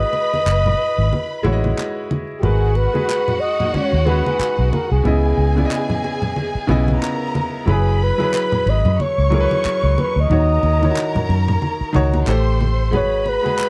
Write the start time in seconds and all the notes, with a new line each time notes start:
Already playing: G#3 E4 F#4 B4 D#5 B5
0.13 muted conga
0.34 high conga
0.46 F#1, clap, muted conga
0.66 low conga
0.98 G#1
1.13 high conga
1.43 A1 G#3 E4 F#4 C#5, muted conga, high conga
1.53 D#5
1.64 high conga
1.78 clap, muted conga
2.11 high conga
2.38 G#3 G4
2.43 G#1 F#4 G#4 A#4 B4 F#5, low conga
2.75 B4, muted conga
2.93 G#3 F#4 G#4 B4, high conga
3.09 clap, muted conga
3.28 low conga
3.40 D#5
3.60 A#3 D#4, low conga
3.74 G#3 C#4 C#5, muted fingered electric bass stroke, muted conga, high conga
3.93 D#2 A#3 D#4
4.05 G#3 C#4 F#4 G#4 B4, high conga
4.26 D#4 G#4, high conga
4.39 muted fingered electric bass stroke, clap, muted conga
4.59 B1
4.72 A#4, muted conga, high conga
4.91 C2 G#4
5.04 C#2 C#3 B3 E4 G#4 D#5 G#5, muted conga, low conga
5.38 C#2
5.55 C#3 B3 E4 D5, high conga
5.65 D#5
5.71 clap, muted conga
5.90 low conga
6.04 muted conga
6.22 low conga
6.36 high conga
6.55 muted fingered electric bass stroke
6.67 B1 C#3 B3 E4 D#5, muted conga, high conga
6.88 high conga
7.02 A#4 A#5, clap, muted conga
7.35 muted conga, high conga
7.66 F#1 F#3 E4 G#4 B4 B5, muted conga, low conga
7.70 G#4
8.03 B4
8.18 F#3 E4 G#4 B4, high conga
8.33 clap, muted conga
8.52 low conga
8.66 G#1 D#5, muted conga
8.85 F#2, low conga
8.99 C#5 C#6, muted fingered electric bass stroke, high conga
9.18 C#2
9.30 F#3 E4 G#4 A#4 C#5, muted conga, high conga
9.40 B4
9.51 high conga
9.65 muted fingered electric bass stroke, clap, muted conga
9.83 C#2
9.98 B4, muted conga, high conga
10.16 D2 D#5
10.29 D#2 D#3 D#4 F#4 A#4 C#5 A#5, muted conga, low conga
10.63 D#2, muted conga
10.81 D#3 D#4 E4 C#5, high conga
10.90 F#4
10.97 clap, muted conga
11.15 muted fingered electric bass stroke, low conga
11.29 F#2, muted conga
11.48 low conga
11.62 muted conga, high conga
11.81 muted fingered electric bass stroke
11.93 C#2 D#3 D#4 F#4 C#5, muted conga, high conga
12.14 high conga
12.26 A1 A3 G4 A4 C5 C6, clap, muted conga
12.61 high conga
12.91 G#1 G#3 F#4 G#4 B4 B5, muted conga, low conga
12.95 C#5
13.26 B4, muted conga
13.42 G#3 F#4 G#4 B4, high conga
13.59 clap, muted conga